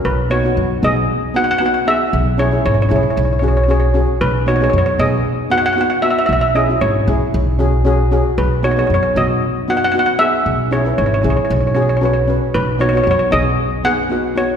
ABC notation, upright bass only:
X:1
M:4/4
L:1/16
Q:1/4=115
K:B
V:1 name="Upright bass" clef=bass
B,,,4 F,,2 B,,,2 z8 | B,,,4 G,,,2 B,,, z B,,,8 | B,,,4 F,,2 B,,,2 z8 | B,,,4 G,,,2 B,,, z B,,,8 |
B,,,4 F,,2 B,,,2 z8 | B,,,4 G,,,2 B,,, z B,,,8 | B,,,4 F,,2 B,,,2 z8 |]